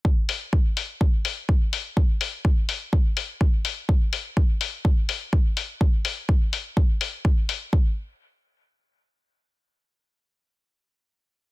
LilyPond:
\new DrumStaff \with { instrumentName = "Drums" } \drummode { \time 4/4 \tempo 4 = 125 bd8 hho8 bd8 hho8 bd8 hho8 bd8 hho8 | bd8 hho8 bd8 hho8 bd8 hho8 bd8 hho8 | bd8 hho8 bd8 hho8 bd8 hho8 bd8 hho8 | bd8 hho8 bd8 hho8 bd8 hho8 bd8 hho8 |
bd4 r4 r4 r4 | r4 r4 r4 r4 | }